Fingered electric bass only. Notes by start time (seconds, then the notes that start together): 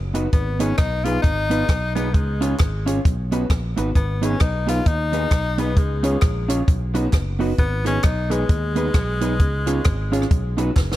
Already playing: F#1
0.33 G#1
0.79 B1
1.24 G#1
1.69 B1
2.15 C#2
2.60 G#1
3.06 B1
3.50 A#1
3.78 G#1
3.96 G#1
4.41 B1
4.86 D#2
5.32 B1
5.77 C#2
6.23 A#1
6.68 B1
7.14 F#1
7.59 G#1
8.04 B1
8.50 D#2
8.95 B1
9.40 C#2
9.86 G#1
10.31 B1
10.77 F#1